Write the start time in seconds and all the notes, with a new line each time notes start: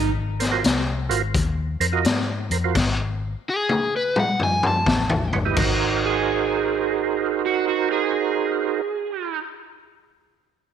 Already playing: G#1
0.40 A#4 C5, snare, closed hi-hat
0.52 F4 F#4 A#4 C5
0.64 C2, snare, closed hi-hat
1.09 G#1 F4 F#4 A#4 C5, closed hi-hat
1.34 D#2, kick, closed hi-hat
1.80 F2 A#4 C5, closed hi-hat
1.92 F4 F#4 A#4 D#5
2.05 G#2, snare, closed hi-hat
2.50 F2 A#4 C5, closed hi-hat
2.64 F4 F#4 A#4 C5
2.75 G#1, kick, snare, crash
3.50 G#4
3.69 high tom
3.96 B4
4.16 F#5, mid tom
4.40 G#5, mid tom
4.63 A5, mid tom
4.86 A1, kick, snare, floor tom
5.10 floor tom
5.33 G1 B4 C#5, floor tom
5.45 E4 G4 B4 D#5
5.57 G#1 D#4 F#4 A#4 C5, kick, crash
6.06 G#4
7.46 F#4
7.68 F#4
7.92 G#4